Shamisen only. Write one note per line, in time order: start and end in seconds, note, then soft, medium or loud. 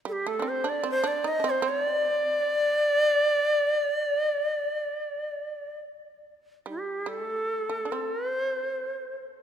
0.05 0.25 G3 medium
0.27 0.41 A3 medium
0.39 0.63 C4 medium
0.39 0.46 D4 medium
0.64 0.83 D4 medium
0.84 1.03 C4 medium
1.04 1.24 D4 medium
1.24 1.39 D#4 medium
1.40 1.44 D4 medium
1.44 1.62 C4 medium
1.62 2.36 C4 medium
2.36 2.83 C#4 medium
2.83 5.74 D4 medium
6.66 7.05 G3 medium
7.06 7.24 G3 medium
7.24 7.67 A3 medium
7.69 7.83 A3 medium
7.85 7.92 D4 medium
7.92 9.12 C4 medium